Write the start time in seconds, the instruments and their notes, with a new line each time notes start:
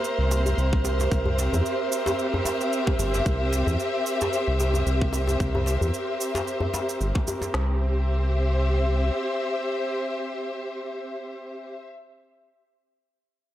Already playing: string section A#3 C4 G4 C5 E5, synth texture A#4
0.04 shaker
0.19 analog synth bass C2
0.31 djembe slap, shaker
0.46 djembe tone, shaker
0.58 analog synth bass C2, shaker
0.73 kick
0.85 djembe slap, shaker
0.99 djembe slap, djembe tone, shaker
1.11 analog synth bass C2, kick, shaker
1.26 djembe bass
1.39 djembe slap, shaker
1.53 analog synth bass E2, djembe bass, shaker
1.66 shaker
1.92 shaker
2.06 djembe slap, djembe tone, shaker
2.19 shaker
2.34 djembe bass
2.45 djembe slap, djembe tone, shaker
2.61 shaker
2.73 shaker
2.87 kick, djembe slap
2.99 analog synth bass G1, djembe tone, shaker
3.14 djembe slap, djembe tone, shaker
3.26 analog synth bass C2, kick, shaker
3.53 djembe slap, shaker
3.67 analog synth bass E2, djembe bass, shaker
3.80 shaker
4.06 shaker
4.21 djembe slap, djembe tone, shaker
4.33 shaker
4.48 analog synth bass C2
4.60 djembe slap, shaker
4.74 djembe tone, shaker
4.86 analog synth bass C2, shaker
5.02 kick
5.13 djembe slap, shaker
5.27 djembe slap, djembe tone, shaker
5.40 analog synth bass C2, kick, shaker
5.55 djembe tone, djembe bass
5.66 djembe slap, shaker
5.81 analog synth bass E2, djembe bass, shaker
5.94 shaker
6.21 shaker
6.35 djembe slap, djembe tone, shaker
6.48 shaker
6.61 djembe bass
6.74 djembe slap, djembe tone, shaker
6.89 shaker
7.01 analog synth bass G1, shaker
7.15 kick, djembe slap
7.27 djembe tone, shaker
7.42 djembe slap, djembe tone, shaker
7.54 analog synth bass C2, string section C4, snare
7.62 string section G4
7.71 string section C5
7.78 string section E5